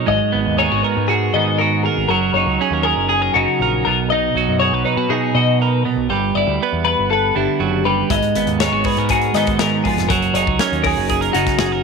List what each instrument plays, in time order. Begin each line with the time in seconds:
Already playing: clean electric guitar F#3
0.06 picked electric bass G#1, clean electric guitar G#2 D#5
0.32 picked electric bass G#1, clean electric guitar B3
0.46 picked electric bass D#2
0.58 clean electric guitar G#3 D#4 C#5
0.72 picked electric bass G#1, clean electric guitar F#4
0.83 clean electric guitar A#4 B4
0.97 picked electric bass G#2
1.08 clean electric guitar F#4 G#4
1.34 picked electric bass G#2, clean electric guitar D#3 B3 D#5
1.59 clean electric guitar F#4 A#4
1.83 clean electric guitar G#4 A#4
1.97 picked electric bass G#1
2.08 picked electric bass F#1, clean electric guitar F#3 A#4
2.34 picked electric bass F#1, clean electric guitar D#4 C#5
2.46 picked electric bass C#2
2.61 clean electric guitar C#4 G#4
2.71 picked electric bass D#2, clean electric guitar A#4
2.83 clean electric guitar G#4 A#4
2.96 picked electric bass F#1
3.09 clean electric guitar G#4
3.22 clean electric guitar A#4
3.34 picked electric bass F#1, clean electric guitar C#3 D#4 F#4
3.60 picked electric bass A#1, clean electric guitar A#4
3.85 picked electric bass B1, clean electric guitar B2 A#4
4.10 clean electric guitar D#4 D#5
4.35 picked electric bass B1, clean electric guitar F#3 F#4
4.48 picked electric bass F#2
4.60 clean electric guitar G#4 C#5
4.72 picked electric bass B1, clean electric guitar B4
4.85 clean electric guitar D#4 B4
4.97 picked electric bass B2, clean electric guitar F#4
5.09 clean electric guitar B2 D#4 G#4
5.35 picked electric bass B2, clean electric guitar F#4 D#5
5.59 clean electric guitar A#4 B4
5.83 clean electric guitar B2 A#4
5.96 picked electric bass B1
6.09 picked electric bass G1, clean electric guitar G3 B4
6.35 picked electric bass G1, clean electric guitar E4 D5
6.47 picked electric bass D2
6.63 clean electric guitar B3 B4
6.73 picked electric bass E2
6.85 clean electric guitar B4
6.99 picked electric bass G1
7.11 clean electric guitar A4 B4
7.35 picked electric bass G1, clean electric guitar D3 E4 G4
7.59 picked electric bass F#1, clean electric guitar F#3
7.85 clean electric guitar G3 B4
8.10 picked electric bass G#1, clean electric guitar G#2 D#5, kick, closed hi-hat
8.23 closed hi-hat
8.35 picked electric bass G#1, clean electric guitar B3, closed hi-hat
8.46 picked electric bass D#2, closed hi-hat
8.60 clean electric guitar G#3 D#4 C#5, snare, closed hi-hat
8.72 picked electric bass G#1, clean electric guitar F#4
8.84 clean electric guitar G#4 B4, kick, open hi-hat
8.97 picked electric bass G#2, clean electric guitar A#4, closed hi-hat
9.09 clean electric guitar F#4 G#4, kick, closed hi-hat
9.22 closed hi-hat
9.34 picked electric bass G#2, clean electric guitar D#3 B3 D#5, snare, closed hi-hat
9.47 kick, closed hi-hat
9.59 clean electric guitar D#3 A#4, snare, closed hi-hat
9.84 clean electric guitar F3 G#4, kick, open hi-hat
9.97 picked electric bass F1, snare, closed hi-hat
10.09 picked electric bass F#1, clean electric guitar F#3 A#4, kick, closed hi-hat
10.22 closed hi-hat
10.33 picked electric bass F#1, clean electric guitar D#4 C#5, closed hi-hat
10.47 picked electric bass C#2, kick
10.59 clean electric guitar C#4 A#4, snare, closed hi-hat
10.72 picked electric bass D#2, closed hi-hat
10.84 clean electric guitar G#4 A#4, kick, open hi-hat
10.97 picked electric bass F#1
11.09 clean electric guitar G#4, kick, closed hi-hat
11.21 clean electric guitar A#4, closed hi-hat
11.33 picked electric bass F#1, clean electric guitar C#3 D#4 F#4, closed hi-hat
11.47 kick, snare, closed hi-hat
11.59 picked electric bass F#1, clean electric guitar G#4, snare, closed hi-hat
11.72 clean electric guitar A#4